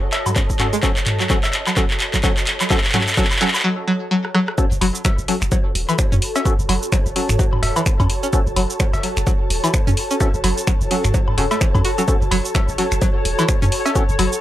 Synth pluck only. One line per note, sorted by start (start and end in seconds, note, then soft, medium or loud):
0.26 0.29 F#3 medium
0.36 0.40 C#4 medium
0.73 0.76 G#3 loud
0.83 0.87 F#3 loud
1.20 1.23 F#3 medium
1.30 1.34 F#3 loud
1.67 1.70 F#3 medium
1.77 1.81 F#3 loud
2.14 2.17 F#3 medium
2.24 2.28 F#3 loud
2.61 2.64 F#3 medium
2.70 2.75 F#3 loud
2.94 2.98 F#3 loud
3.17 3.22 F#3 loud
3.41 3.45 F#3 loud
3.64 3.68 F#3 loud
3.88 3.92 F#3 loud
4.11 4.15 F#3 loud
4.35 4.39 F#3 loud
4.82 4.86 F#3 loud
5.05 5.07 F#3 medium
5.28 5.33 F#3 medium
5.52 5.56 F#3 medium
5.89 5.93 E3 loud
6.12 6.14 C#4 medium
6.36 6.40 C#4 medium
6.69 6.73 F#3 loud
6.92 6.95 F#3 medium
7.16 7.20 F#3 medium
7.39 7.44 F#3 medium
7.76 7.81 E3 loud
8.00 8.02 C#4 medium
8.23 8.28 C#4 medium
8.56 8.61 F#3 loud
8.80 8.82 F#3 medium
9.03 9.08 F#3 medium
9.27 9.31 F#3 medium
9.64 9.68 E3 loud
9.87 9.89 C#4 medium
10.11 10.15 C#4 medium
10.44 10.48 F#3 loud
10.67 10.70 F#3 medium
10.91 10.95 F#3 medium
11.14 11.19 F#3 medium
11.38 11.44 C#3 medium
11.51 11.54 A3 medium
11.61 11.64 E3 medium
11.75 11.77 F#3 medium
11.85 11.91 F#4 medium
11.98 12.01 F#3 medium
12.31 12.36 F#3 loud
12.55 12.57 F#3 medium
12.78 12.83 F#3 medium
13.02 13.06 F#3 medium
13.39 13.43 E3 loud
13.62 13.64 C#4 medium
13.86 13.90 C#4 medium
14.19 14.23 F#3 loud